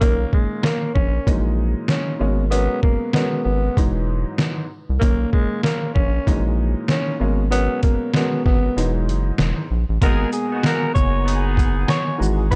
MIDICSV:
0, 0, Header, 1, 7, 480
1, 0, Start_track
1, 0, Key_signature, 5, "minor"
1, 0, Tempo, 625000
1, 13, Time_signature, 4, 2, 24, 8
1, 9641, End_track
2, 0, Start_track
2, 0, Title_t, "Analog synth pad"
2, 0, Program_c, 0, 89
2, 7693, Note_on_c, 0, 80, 94
2, 7694, Note_on_c, 0, 78, 83
2, 7695, Note_on_c, 0, 82, 83
2, 9356, Note_off_c, 0, 80, 0
2, 9357, Note_off_c, 0, 82, 0
2, 9376, Note_on_c, 0, 68, 89
2, 9376, Note_on_c, 0, 87, 101
2, 9641, Note_off_c, 0, 68, 0
2, 9641, Note_off_c, 0, 78, 0
2, 9641, Note_off_c, 0, 87, 0
2, 9641, End_track
3, 0, Start_track
3, 0, Title_t, "Horn section"
3, 0, Program_c, 1, 61
3, 7703, Note_on_c, 1, 59, 104
3, 7703, Note_on_c, 1, 63, 105
3, 7704, Note_on_c, 1, 68, 127
3, 7891, Note_off_c, 1, 59, 0
3, 7891, Note_off_c, 1, 63, 0
3, 7891, Note_off_c, 1, 68, 0
3, 8078, Note_on_c, 1, 59, 86
3, 8078, Note_on_c, 1, 63, 84
3, 8079, Note_on_c, 1, 66, 102
3, 8393, Note_off_c, 1, 63, 0
3, 8394, Note_off_c, 1, 59, 0
3, 8394, Note_off_c, 1, 66, 0
3, 8636, Note_on_c, 1, 59, 110
3, 8636, Note_on_c, 1, 63, 102
3, 8636, Note_on_c, 1, 68, 113
3, 9237, Note_off_c, 1, 68, 0
3, 9238, Note_off_c, 1, 59, 0
3, 9238, Note_off_c, 1, 63, 0
3, 9641, End_track
4, 0, Start_track
4, 0, Title_t, "Tenor saxophone"
4, 0, Program_c, 2, 66
4, 5, Note_on_c, 2, 58, 96
4, 224, Note_off_c, 2, 58, 0
4, 259, Note_on_c, 2, 56, 81
4, 472, Note_off_c, 2, 56, 0
4, 494, Note_on_c, 2, 58, 87
4, 709, Note_off_c, 2, 58, 0
4, 727, Note_on_c, 2, 61, 84
4, 1090, Note_off_c, 2, 61, 0
4, 1451, Note_on_c, 2, 61, 79
4, 1668, Note_off_c, 2, 61, 0
4, 1925, Note_on_c, 2, 59, 111
4, 2145, Note_off_c, 2, 59, 0
4, 2171, Note_on_c, 2, 58, 82
4, 2388, Note_off_c, 2, 58, 0
4, 2410, Note_on_c, 2, 59, 83
4, 2627, Note_off_c, 2, 59, 0
4, 2645, Note_on_c, 2, 59, 86
4, 3009, Note_off_c, 2, 59, 0
4, 3836, Note_on_c, 2, 58, 99
4, 4060, Note_off_c, 2, 58, 0
4, 4090, Note_on_c, 2, 56, 87
4, 4307, Note_off_c, 2, 56, 0
4, 4328, Note_on_c, 2, 58, 91
4, 4546, Note_off_c, 2, 58, 0
4, 4566, Note_on_c, 2, 61, 86
4, 4930, Note_off_c, 2, 61, 0
4, 5296, Note_on_c, 2, 61, 85
4, 5511, Note_off_c, 2, 61, 0
4, 5772, Note_on_c, 2, 59, 110
4, 5988, Note_off_c, 2, 59, 0
4, 6014, Note_on_c, 2, 58, 80
4, 6230, Note_off_c, 2, 58, 0
4, 6253, Note_on_c, 2, 59, 84
4, 6469, Note_off_c, 2, 59, 0
4, 6494, Note_on_c, 2, 59, 87
4, 6854, Note_off_c, 2, 59, 0
4, 7702, Note_on_c, 2, 70, 105
4, 7914, Note_off_c, 2, 70, 0
4, 7932, Note_on_c, 2, 68, 78
4, 8148, Note_off_c, 2, 68, 0
4, 8182, Note_on_c, 2, 70, 88
4, 8394, Note_off_c, 2, 70, 0
4, 8404, Note_on_c, 2, 73, 88
4, 8769, Note_off_c, 2, 73, 0
4, 9135, Note_on_c, 2, 73, 86
4, 9350, Note_off_c, 2, 73, 0
4, 9609, Note_on_c, 2, 71, 107
4, 9641, Note_off_c, 2, 71, 0
4, 9641, End_track
5, 0, Start_track
5, 0, Title_t, "Upright piano"
5, 0, Program_c, 3, 0
5, 6, Note_on_c, 3, 46, 87
5, 10, Note_on_c, 3, 51, 87
5, 14, Note_on_c, 3, 58, 86
5, 19, Note_on_c, 3, 61, 105
5, 958, Note_off_c, 3, 46, 0
5, 970, Note_on_c, 3, 46, 91
5, 971, Note_off_c, 3, 51, 0
5, 973, Note_off_c, 3, 58, 0
5, 973, Note_on_c, 3, 52, 77
5, 976, Note_off_c, 3, 61, 0
5, 976, Note_on_c, 3, 54, 85
5, 980, Note_on_c, 3, 56, 80
5, 983, Note_on_c, 3, 63, 102
5, 1674, Note_off_c, 3, 54, 0
5, 1678, Note_off_c, 3, 56, 0
5, 1683, Note_on_c, 3, 47, 91
5, 1686, Note_on_c, 3, 54, 77
5, 1690, Note_on_c, 3, 56, 83
5, 1691, Note_off_c, 3, 46, 0
5, 1693, Note_off_c, 3, 52, 0
5, 1693, Note_on_c, 3, 58, 82
5, 1697, Note_on_c, 3, 61, 104
5, 1698, Note_off_c, 3, 63, 0
5, 1859, Note_off_c, 3, 47, 0
5, 1860, Note_off_c, 3, 54, 0
5, 1862, Note_off_c, 3, 56, 0
5, 1864, Note_off_c, 3, 58, 0
5, 1865, Note_off_c, 3, 61, 0
5, 1920, Note_on_c, 3, 47, 92
5, 1924, Note_on_c, 3, 54, 84
5, 1927, Note_on_c, 3, 56, 80
5, 1930, Note_on_c, 3, 70, 89
5, 1933, Note_on_c, 3, 61, 108
5, 2376, Note_off_c, 3, 47, 0
5, 2377, Note_off_c, 3, 54, 0
5, 2379, Note_off_c, 3, 56, 0
5, 2381, Note_off_c, 3, 70, 0
5, 2382, Note_off_c, 3, 61, 0
5, 2418, Note_on_c, 3, 47, 95
5, 2421, Note_on_c, 3, 54, 84
5, 2424, Note_on_c, 3, 56, 86
5, 2427, Note_on_c, 3, 70, 85
5, 2431, Note_on_c, 3, 61, 95
5, 2892, Note_off_c, 3, 54, 0
5, 2895, Note_off_c, 3, 47, 0
5, 2895, Note_on_c, 3, 44, 85
5, 2899, Note_off_c, 3, 56, 0
5, 2899, Note_on_c, 3, 52, 84
5, 2900, Note_off_c, 3, 70, 0
5, 2902, Note_off_c, 3, 61, 0
5, 2903, Note_on_c, 3, 54, 82
5, 2907, Note_on_c, 3, 63, 94
5, 3568, Note_off_c, 3, 44, 0
5, 3570, Note_off_c, 3, 52, 0
5, 3572, Note_off_c, 3, 54, 0
5, 3574, Note_off_c, 3, 63, 0
5, 3847, Note_on_c, 3, 46, 92
5, 3851, Note_on_c, 3, 51, 86
5, 3856, Note_on_c, 3, 58, 86
5, 3860, Note_on_c, 3, 61, 104
5, 4799, Note_off_c, 3, 46, 0
5, 4811, Note_on_c, 3, 46, 90
5, 4812, Note_off_c, 3, 51, 0
5, 4814, Note_off_c, 3, 58, 0
5, 4814, Note_on_c, 3, 52, 80
5, 4816, Note_off_c, 3, 61, 0
5, 4818, Note_on_c, 3, 54, 84
5, 4821, Note_on_c, 3, 56, 81
5, 4825, Note_on_c, 3, 63, 99
5, 5516, Note_off_c, 3, 54, 0
5, 5519, Note_off_c, 3, 56, 0
5, 5524, Note_on_c, 3, 47, 88
5, 5527, Note_on_c, 3, 54, 79
5, 5531, Note_on_c, 3, 56, 84
5, 5532, Note_off_c, 3, 46, 0
5, 5534, Note_off_c, 3, 52, 0
5, 5534, Note_on_c, 3, 58, 83
5, 5538, Note_on_c, 3, 61, 101
5, 5539, Note_off_c, 3, 63, 0
5, 5699, Note_off_c, 3, 47, 0
5, 5701, Note_off_c, 3, 54, 0
5, 5702, Note_off_c, 3, 56, 0
5, 5704, Note_off_c, 3, 58, 0
5, 5706, Note_off_c, 3, 61, 0
5, 5760, Note_on_c, 3, 47, 94
5, 5764, Note_on_c, 3, 54, 84
5, 5766, Note_on_c, 3, 56, 80
5, 5771, Note_on_c, 3, 70, 90
5, 5773, Note_on_c, 3, 61, 106
5, 6216, Note_off_c, 3, 47, 0
5, 6217, Note_off_c, 3, 54, 0
5, 6219, Note_off_c, 3, 56, 0
5, 6221, Note_off_c, 3, 70, 0
5, 6222, Note_off_c, 3, 61, 0
5, 6258, Note_on_c, 3, 47, 95
5, 6261, Note_on_c, 3, 54, 82
5, 6265, Note_on_c, 3, 56, 83
5, 6269, Note_on_c, 3, 70, 87
5, 6271, Note_on_c, 3, 61, 92
5, 6731, Note_off_c, 3, 54, 0
5, 6734, Note_on_c, 3, 44, 85
5, 6736, Note_off_c, 3, 47, 0
5, 6738, Note_on_c, 3, 52, 86
5, 6739, Note_off_c, 3, 56, 0
5, 6741, Note_off_c, 3, 70, 0
5, 6742, Note_off_c, 3, 61, 0
5, 6743, Note_on_c, 3, 54, 83
5, 6747, Note_on_c, 3, 63, 95
5, 7407, Note_off_c, 3, 44, 0
5, 7409, Note_off_c, 3, 52, 0
5, 7412, Note_off_c, 3, 54, 0
5, 7414, Note_off_c, 3, 63, 0
5, 7690, Note_on_c, 3, 47, 101
5, 7695, Note_on_c, 3, 56, 93
5, 7699, Note_on_c, 3, 58, 83
5, 7704, Note_on_c, 3, 66, 104
5, 9349, Note_off_c, 3, 56, 0
5, 9352, Note_off_c, 3, 47, 0
5, 9356, Note_on_c, 3, 52, 89
5, 9357, Note_off_c, 3, 58, 0
5, 9358, Note_off_c, 3, 66, 0
5, 9360, Note_on_c, 3, 56, 82
5, 9365, Note_on_c, 3, 63, 81
5, 9369, Note_on_c, 3, 66, 99
5, 9535, Note_off_c, 3, 52, 0
5, 9537, Note_off_c, 3, 56, 0
5, 9540, Note_off_c, 3, 63, 0
5, 9542, Note_off_c, 3, 66, 0
5, 9605, Note_on_c, 3, 52, 87
5, 9609, Note_on_c, 3, 56, 85
5, 9614, Note_on_c, 3, 63, 90
5, 9618, Note_on_c, 3, 66, 113
5, 9641, Note_off_c, 3, 52, 0
5, 9641, Note_off_c, 3, 56, 0
5, 9641, Note_off_c, 3, 63, 0
5, 9641, Note_off_c, 3, 66, 0
5, 9641, End_track
6, 0, Start_track
6, 0, Title_t, "Analog synth bass"
6, 0, Program_c, 4, 38
6, 12, Note_on_c, 4, 35, 106
6, 196, Note_off_c, 4, 35, 0
6, 735, Note_on_c, 4, 34, 86
6, 918, Note_off_c, 4, 34, 0
6, 976, Note_on_c, 4, 34, 107
6, 1342, Note_off_c, 4, 34, 0
6, 1695, Note_on_c, 4, 32, 98
6, 2062, Note_off_c, 4, 32, 0
6, 2655, Note_on_c, 4, 32, 90
6, 2838, Note_off_c, 4, 32, 0
6, 2896, Note_on_c, 4, 28, 109
6, 3263, Note_off_c, 4, 28, 0
6, 3759, Note_on_c, 4, 36, 88
6, 3832, Note_off_c, 4, 36, 0
6, 3853, Note_on_c, 4, 35, 110
6, 4037, Note_off_c, 4, 35, 0
6, 4576, Note_on_c, 4, 34, 85
6, 4758, Note_off_c, 4, 34, 0
6, 4817, Note_on_c, 4, 34, 105
6, 5183, Note_off_c, 4, 34, 0
6, 5536, Note_on_c, 4, 32, 95
6, 5902, Note_off_c, 4, 32, 0
6, 6495, Note_on_c, 4, 32, 97
6, 6678, Note_off_c, 4, 32, 0
6, 6736, Note_on_c, 4, 28, 99
6, 6974, Note_on_c, 4, 30, 92
6, 6985, Note_off_c, 4, 28, 0
6, 7157, Note_off_c, 4, 30, 0
6, 7214, Note_on_c, 4, 28, 95
6, 7324, Note_off_c, 4, 28, 0
6, 7456, Note_on_c, 4, 34, 92
6, 7565, Note_off_c, 4, 34, 0
6, 7598, Note_on_c, 4, 33, 93
6, 7671, Note_off_c, 4, 33, 0
6, 7693, Note_on_c, 4, 32, 102
6, 7877, Note_off_c, 4, 32, 0
6, 8416, Note_on_c, 4, 30, 94
6, 9104, Note_off_c, 4, 30, 0
6, 9375, Note_on_c, 4, 32, 102
6, 9641, Note_off_c, 4, 32, 0
6, 9641, End_track
7, 0, Start_track
7, 0, Title_t, "Drums"
7, 12, Note_on_c, 9, 36, 111
7, 14, Note_on_c, 9, 42, 97
7, 89, Note_off_c, 9, 36, 0
7, 90, Note_off_c, 9, 42, 0
7, 252, Note_on_c, 9, 36, 93
7, 329, Note_off_c, 9, 36, 0
7, 486, Note_on_c, 9, 40, 94
7, 492, Note_on_c, 9, 38, 114
7, 506, Note_on_c, 9, 42, 80
7, 562, Note_off_c, 9, 40, 0
7, 569, Note_off_c, 9, 38, 0
7, 583, Note_off_c, 9, 42, 0
7, 734, Note_on_c, 9, 36, 90
7, 811, Note_off_c, 9, 36, 0
7, 975, Note_on_c, 9, 36, 109
7, 980, Note_on_c, 9, 42, 82
7, 1052, Note_off_c, 9, 36, 0
7, 1057, Note_off_c, 9, 42, 0
7, 1445, Note_on_c, 9, 40, 84
7, 1452, Note_on_c, 9, 38, 108
7, 1460, Note_on_c, 9, 42, 70
7, 1522, Note_off_c, 9, 40, 0
7, 1528, Note_off_c, 9, 38, 0
7, 1537, Note_off_c, 9, 42, 0
7, 1934, Note_on_c, 9, 42, 97
7, 2011, Note_off_c, 9, 42, 0
7, 2173, Note_on_c, 9, 36, 93
7, 2250, Note_off_c, 9, 36, 0
7, 2407, Note_on_c, 9, 40, 90
7, 2413, Note_on_c, 9, 38, 114
7, 2427, Note_on_c, 9, 42, 79
7, 2483, Note_off_c, 9, 40, 0
7, 2490, Note_off_c, 9, 38, 0
7, 2504, Note_off_c, 9, 42, 0
7, 2896, Note_on_c, 9, 36, 111
7, 2902, Note_on_c, 9, 42, 86
7, 2973, Note_off_c, 9, 36, 0
7, 2979, Note_off_c, 9, 42, 0
7, 3366, Note_on_c, 9, 40, 85
7, 3372, Note_on_c, 9, 38, 106
7, 3381, Note_on_c, 9, 42, 70
7, 3443, Note_off_c, 9, 40, 0
7, 3449, Note_off_c, 9, 38, 0
7, 3458, Note_off_c, 9, 42, 0
7, 3853, Note_on_c, 9, 36, 114
7, 3856, Note_on_c, 9, 42, 98
7, 3929, Note_off_c, 9, 36, 0
7, 3932, Note_off_c, 9, 42, 0
7, 4093, Note_on_c, 9, 36, 93
7, 4170, Note_off_c, 9, 36, 0
7, 4327, Note_on_c, 9, 40, 93
7, 4333, Note_on_c, 9, 38, 114
7, 4348, Note_on_c, 9, 42, 80
7, 4404, Note_off_c, 9, 40, 0
7, 4410, Note_off_c, 9, 38, 0
7, 4424, Note_off_c, 9, 42, 0
7, 4575, Note_on_c, 9, 36, 91
7, 4651, Note_off_c, 9, 36, 0
7, 4816, Note_on_c, 9, 36, 111
7, 4822, Note_on_c, 9, 42, 84
7, 4893, Note_off_c, 9, 36, 0
7, 4898, Note_off_c, 9, 42, 0
7, 5286, Note_on_c, 9, 40, 83
7, 5292, Note_on_c, 9, 38, 109
7, 5301, Note_on_c, 9, 42, 69
7, 5363, Note_off_c, 9, 40, 0
7, 5369, Note_off_c, 9, 38, 0
7, 5378, Note_off_c, 9, 42, 0
7, 5776, Note_on_c, 9, 42, 101
7, 5853, Note_off_c, 9, 42, 0
7, 6011, Note_on_c, 9, 42, 57
7, 6014, Note_on_c, 9, 36, 92
7, 6088, Note_off_c, 9, 42, 0
7, 6091, Note_off_c, 9, 36, 0
7, 6248, Note_on_c, 9, 40, 93
7, 6254, Note_on_c, 9, 38, 115
7, 6269, Note_on_c, 9, 42, 80
7, 6325, Note_off_c, 9, 40, 0
7, 6331, Note_off_c, 9, 38, 0
7, 6346, Note_off_c, 9, 42, 0
7, 6494, Note_on_c, 9, 38, 35
7, 6495, Note_on_c, 9, 36, 90
7, 6571, Note_off_c, 9, 38, 0
7, 6572, Note_off_c, 9, 36, 0
7, 6742, Note_on_c, 9, 42, 81
7, 6819, Note_off_c, 9, 42, 0
7, 6982, Note_on_c, 9, 42, 50
7, 7058, Note_off_c, 9, 42, 0
7, 7206, Note_on_c, 9, 40, 84
7, 7212, Note_on_c, 9, 38, 110
7, 7221, Note_on_c, 9, 42, 68
7, 7283, Note_off_c, 9, 40, 0
7, 7289, Note_off_c, 9, 38, 0
7, 7298, Note_off_c, 9, 42, 0
7, 7693, Note_on_c, 9, 36, 119
7, 7695, Note_on_c, 9, 42, 99
7, 7769, Note_off_c, 9, 36, 0
7, 7772, Note_off_c, 9, 42, 0
7, 7931, Note_on_c, 9, 42, 59
7, 7931, Note_on_c, 9, 82, 58
7, 8008, Note_off_c, 9, 42, 0
7, 8008, Note_off_c, 9, 82, 0
7, 8167, Note_on_c, 9, 40, 92
7, 8173, Note_on_c, 9, 38, 116
7, 8188, Note_on_c, 9, 42, 83
7, 8244, Note_off_c, 9, 40, 0
7, 8250, Note_off_c, 9, 38, 0
7, 8265, Note_off_c, 9, 42, 0
7, 8415, Note_on_c, 9, 36, 96
7, 8415, Note_on_c, 9, 82, 53
7, 8492, Note_off_c, 9, 36, 0
7, 8492, Note_off_c, 9, 82, 0
7, 8662, Note_on_c, 9, 42, 85
7, 8739, Note_off_c, 9, 42, 0
7, 8888, Note_on_c, 9, 36, 83
7, 8902, Note_on_c, 9, 42, 52
7, 8902, Note_on_c, 9, 82, 52
7, 8965, Note_off_c, 9, 36, 0
7, 8979, Note_off_c, 9, 42, 0
7, 8979, Note_off_c, 9, 82, 0
7, 9126, Note_on_c, 9, 40, 90
7, 9132, Note_on_c, 9, 38, 112
7, 9141, Note_on_c, 9, 42, 72
7, 9203, Note_off_c, 9, 40, 0
7, 9209, Note_off_c, 9, 38, 0
7, 9218, Note_off_c, 9, 42, 0
7, 9388, Note_on_c, 9, 82, 55
7, 9465, Note_off_c, 9, 82, 0
7, 9612, Note_on_c, 9, 36, 116
7, 9615, Note_on_c, 9, 42, 100
7, 9641, Note_off_c, 9, 36, 0
7, 9641, Note_off_c, 9, 42, 0
7, 9641, End_track
0, 0, End_of_file